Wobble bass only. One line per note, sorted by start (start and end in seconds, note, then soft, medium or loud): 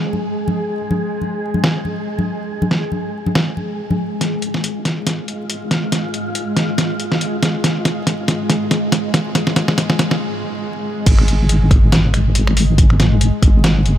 4.21 4.84 G#1 medium
4.85 6.46 G#1 loud
6.57 7.01 G#1 loud
6.99 7.53 F#1 medium
7.64 8.27 G#1 loud
8.28 9.88 G#1 loud
9.99 10.21 G#1 loud
11.07 11.70 G#1 loud
11.71 13.31 G#1 loud
13.42 13.87 G#1 loud
13.85 13.98 F#1 medium